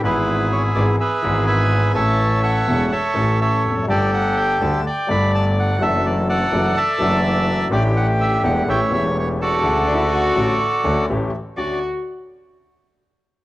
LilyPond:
<<
  \new Staff \with { instrumentName = "Bandoneon" } { \time 4/4 \key d \major \tempo 4 = 125 << { b'4 cis''8 d''8 e''4 gis''4 | a''4 fis''4 e''4 e''8. r16 | d''8 fis''8 g''8 a''8 g''8 b''8 a''8 fis''8 | e''8 d''8 fis''4 a''2 |
d''8 fis''8 e''8 fis''8 g''8 e''8 cis''8 d''8~ | d''2. r4 | d''8 r2. r8 | } \\ { <e' gis'>2 <gis' b'>4 <b' e''>4 | <cis'' e''>4 <a' cis''>4 <a' cis''>4 <a' cis''>4 | <g' a'>2 d''2 | a'4 <a' d''>4 <d'' e''>2 |
g'2 <cis'' e''>4. <fis' a'>8~ | <fis' a'>2. r4 | r1 | } >> }
  \new Staff \with { instrumentName = "Cello" } { \time 4/4 \key d \major r1 | r1 | r1 | r1 |
r1 | \tuplet 3/2 { r8. d'16 e'8 } fis'4 r2 | fis'8 r2. r8 | }
  \new Staff \with { instrumentName = "Grand piano" } { \clef bass \time 4/4 \key d \major << { <gis,, gis, e gis b gis'>4. <gis,, gis, e gis b gis'>8 r8 <gis,, gis, e gis b gis'>4. | <a,, a, e a cis' a'>4. <e,, e, e a cis' a'>8 r8 <a,, a, e a cis' a'>4. | <g,, g, g a d' a'>4. <d, d g a d' a'>8 r8 <g,, g, g a d' a'>4. | <fis, e fis a d' fis'>4. <fis, e fis a d' fis'>8 r8 <fis, e fis a d' fis'>4. |
<a,, a, e a d' g'>4. <e,, e, e a d' g'>8 <a,, a, e a cis' g'>8 <e,, e, e a cis' g'>4. | <d, cis d a fis'>4. <a,, a, d a cis' fis'>8 r8 <d, d a cis' fis'>8 <a,, a, e a cis' g'>8 r8 | <d, cis' d' fis'>8 r2. r8 | } \\ { r1 | r2. r8 r32 e,32 f,32 fis,32 | r1 | r1 |
r1 | r1 | r1 | } >> }
  \new Staff \with { instrumentName = "Double bass" } { \clef bass \time 4/4 \key d \major gis,,4. gis,,8 r8 gis,,4. | a,,4. e,,8 r8 a,,4 f,,8 | g,,4. d,8 r8 g,,4. | fis,,4. fis,,8 r8 fis,,4. |
a,,4. e,,8 a,,8 e,,4. | d,4. a,,8 r8 d,8 a,,8 r8 | d,8 r2. r8 | }
>>